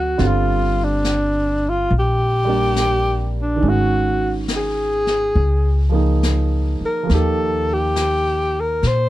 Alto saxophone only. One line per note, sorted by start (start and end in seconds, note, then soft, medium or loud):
0.00 0.29 F#4 medium
0.28 0.85 F4 medium
0.84 1.71 D4 medium
1.69 1.93 F4 medium
1.99 3.34 G4 medium
3.42 3.71 D4 medium
3.69 4.34 F#4 medium
4.56 5.93 G#4 medium
6.86 7.16 A#4 medium
7.14 7.75 A4 medium
7.74 8.62 G4 medium
8.60 8.89 A#4 medium
8.87 9.09 C5 medium